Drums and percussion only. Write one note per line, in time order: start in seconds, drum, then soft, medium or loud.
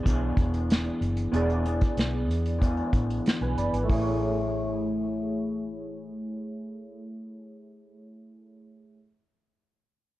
0.06 kick medium
0.06 closed hi-hat medium
0.37 kick medium
0.37 closed hi-hat medium
0.54 closed hi-hat soft
0.70 snare loud
0.70 closed hi-hat medium
0.85 closed hi-hat soft
1.02 closed hi-hat medium
1.17 closed hi-hat medium
1.33 closed hi-hat medium
1.50 closed hi-hat soft
1.65 closed hi-hat medium
1.81 kick medium
1.81 closed hi-hat soft
1.97 snare medium
1.97 closed hi-hat medium
2.31 closed hi-hat medium
2.45 closed hi-hat soft
2.62 kick medium
2.62 closed hi-hat medium
2.77 closed hi-hat soft
2.93 kick medium
2.93 closed hi-hat medium
3.10 closed hi-hat soft
3.26 snare medium
3.26 closed hi-hat medium
3.41 closed hi-hat soft
3.58 closed hi-hat medium
3.73 closed hi-hat soft
3.89 kick medium
3.89 open hi-hat medium